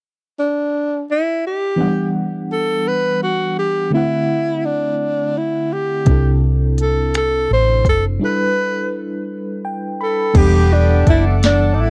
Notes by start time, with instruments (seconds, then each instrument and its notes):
0.39 tenor saxophone D4
1.11 tenor saxophone E4
1.47 tenor saxophone G4
1.76 fm electric piano E3 B3 D4
1.81 fm electric piano G3 F#5
2.52 tenor saxophone A4
2.88 tenor saxophone B4
3.23 tenor saxophone F#4
3.59 tenor saxophone G4
3.90 fm electric piano D3 A3 C4, tenor saxophone E4
3.95 fm electric piano E4 F#5
4.65 tenor saxophone D4
5.37 tenor saxophone E4
5.73 tenor saxophone G4
6.05 fingered electric bass C2, fm electric piano C3 C4 D4, kick, closed hi-hat
6.09 fm electric piano E4 A4
6.78 tenor saxophone A4, closed hi-hat
7.14 tenor saxophone A4, finger snap, closed hi-hat
7.50 fingered electric bass A1, tenor saxophone C5
7.85 fingered electric bass F#1, kick, closed hi-hat
7.89 tenor saxophone A4
8.19 fm electric piano G3 D4 E4
8.23 fm electric piano A4 B4, tenor saxophone B4
9.65 fm electric piano G5
10.01 tenor saxophone A4, fm electric piano B5
10.34 fingered electric bass E1, horn section D3 B3 G4, fm electric piano E3 B3 D4, analog synth pad A4 A5, kick, closed hi-hat, crash
10.38 fm electric piano G3 A4 F#5, tenor saxophone G4
10.74 tenor saxophone D4
11.06 fingered electric bass F#1, horn section B2 A3 D4, tenor saxophone E4, kick, closed hi-hat
11.43 tenor saxophone D4, snare, closed hi-hat
11.74 tenor saxophone D#4
11.78 fingered electric bass A1, tenor saxophone E4